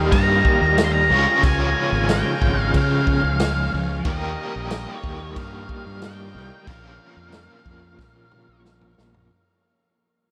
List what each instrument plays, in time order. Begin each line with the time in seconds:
Already playing: overdriven electric guitar D#3 G3 A#3 G4 A#4, transistor combo organ G4 A#4 D#5 F5
0.12 fingered electric bass G2, lead electric guitar A#5, kick, crash
0.45 kick
0.61 fingered electric bass D#2
0.77 lead electric guitar A#5, snare, crash
0.84 lead electric guitar C6
0.92 lead electric guitar A#5
1.10 fingered electric bass C#2, overdriven electric guitar C#3 F3 G#3 C#4 F4 C#5, transistor combo organ F4 G#4 C#5
1.43 fingered electric bass C#2, lead electric guitar G#5, kick, crash
1.92 fingered electric bass G#1
2.09 lead electric guitar G5, snare, crash
2.42 fingered electric bass G#1, kick
2.61 lead electric guitar F5
2.74 fingered electric bass C#3, lead electric guitar F5, kick, crash
3.07 kick
3.24 fingered electric bass C#2
3.40 snare, crash
3.74 fingered electric bass C#2
4.05 fingered electric bass D#2, overdriven electric guitar D#3 G3 A#3 G4, transistor combo organ G4 A#4 D#5, lead electric guitar D#5, kick, crash
4.09 overdriven electric guitar A#4
4.56 fingered electric bass A#1
4.70 snare, crash
4.97 lead electric guitar C#5
5.04 fingered electric bass D#2, kick
5.36 fingered electric bass G2, lead electric guitar F5, kick, crash
5.69 kick
5.86 fingered electric bass G2
6.02 lead electric guitar G5, snare, crash
6.35 fingered electric bass C2
6.67 fingered electric bass A#1, overdriven electric guitar A#2 F3 A#3 C#4 F4 A#4, transistor combo organ F4 A#4 C#5, lead electric guitar F5, kick, crash
7.17 fingered electric bass F2
7.32 snare, crash
7.66 fingered electric bass F2, kick
7.99 fingered electric bass A#2, kick, snare
8.32 mid tom
8.49 fingered electric bass A#1
8.65 snare
8.81 mid tom
8.98 fingered electric bass A#1, snare
9.14 floor tom